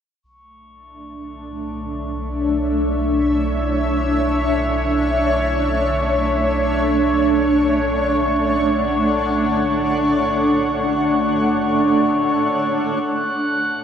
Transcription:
0.23 B1 A3 C#6
0.46 D4
1.37 C#5
1.66 E5
7.06 F#5
13.02 B1 F#6

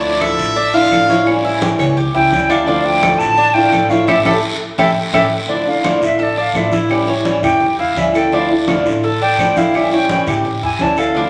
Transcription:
Already playing: D2 D3 F3 A3 D4 E4
0.03 D5, high conga
0.20 A4 E5, high conga, short guiro, claves
0.38 A1, high conga, short guiro
0.56 D4, muted steel-string acoustic guitar stroke, high conga, long guiro
0.73 F3 A3 D4 E4 F4 F5, high conga
0.91 A1 F3 A3 D4 E4 A4, high conga, short guiro, claves
1.09 F3 A3 D4 E4 C#5, high conga, short guiro
1.25 E3 G3 C#4 E4, high conga, long guiro, claves
1.45 E4, high conga
1.62 G4, high conga, short guiro
1.79 C#2 C#5, high conga, low conga, short guiro, claves
1.97 G4, muted steel-string acoustic guitar stroke, high conga, long guiro
2.14 C#2 G3 C#4 E4 G5, high conga
2.32 D2 E3 G3 C#4 E4, high conga, short guiro
2.49 G3 C#4 D4 E4 F5, short guiro, claves
2.66 D3 F3 A3 D4 E4 F5, high conga, long guiro
2.85 G5, high conga
3.02 A4, high conga, short guiro, claves
3.19 A1 A5, high conga, short guiro
3.37 D4, muted steel-string acoustic guitar stroke, high conga, long guiro
3.54 F3 A3 D4 E4 F4 G5, high conga
3.72 A1 F3 A3 D4 E4 A4, high conga, short guiro, claves
3.90 F3 A3 D4 E4 C#5 F5, high conga, short guiro
4.07 A1 A3 C#4 E4 G4 A4 E5, high conga, long guiro, claves
4.25 A1 A3 C#4 E4 G4 A4 E5, high conga, long guiro, claves
4.78 A1 A3 C#4 E4 G4 A4 E5, high conga, long guiro, claves
5.13 A1 A3 C#4 E4 G4 A4 E5, high conga, long guiro, claves
5.47 D3 F3 A3 D4 E4, high conga, long guiro
5.66 A3 D4 E4 F5, high conga
5.83 D3 F3 A3 D4 E4 F4, high conga, short guiro, claves
6.00 A1 A3 D4 E4 E5, high conga, short guiro
6.18 A4, muted steel-string acoustic guitar stroke, high conga, long guiro
6.23 D5
6.37 D4 F5, high conga
6.53 A1 D3 F3 A3 D4 E4, high conga, short guiro, claves
6.57 E5
6.71 A3 D4 E4, high conga, short guiro
6.89 E3 G3 C#4 E4 G4, high conga, long guiro, claves
7.07 G3 C#4 E4 C#5, high conga
7.24 E3 G3 C#4 E4, high conga, short guiro
7.42 E2 G3 C#4 E4 G4 G5, high conga, low conga, short guiro, claves
7.60 muted steel-string acoustic guitar stroke, high conga, low conga, long guiro
7.78 E2 E4 F5, high conga
7.95 D2 E3 G3 C#4 E4 E5, high conga, short guiro
8.13 G3 C#4 E4 A4 G5, short guiro, claves
8.32 D3 F3 A3 D4 E4 F5, high conga, long guiro
8.49 A3 D4 E4, high conga
8.67 D3 F3 A3 D4 E4 F4, high conga, short guiro, claves
8.84 A1 A3 D4 E4, high conga, short guiro
9.03 A4, muted steel-string acoustic guitar stroke, high conga, long guiro
9.21 D4 G5, high conga
9.38 A1 D3 F3 A3 D4 E4, high conga, short guiro, claves
9.56 A3 D4 E4 F5, high conga, short guiro
9.74 E3 G3 C#4 E4 G4 E5, high conga, long guiro, claves
9.91 G3 C#4 E4 C#5 G5, high conga
10.09 E3 G3 C#4 E4 G5, high conga, short guiro
10.27 A2 G3 C#4 E4 G4, high conga, low conga, short guiro, claves
10.44 muted steel-string acoustic guitar stroke, high conga, long guiro
10.62 E2 E4 G#5, high conga
10.79 D2 E3 G3 C#4 E4 A5, high conga, short guiro
10.97 G3 C#4 E4 A4 F5, short guiro, claves
11.14 D3 F3 A3 D4 E4, high conga, long guiro

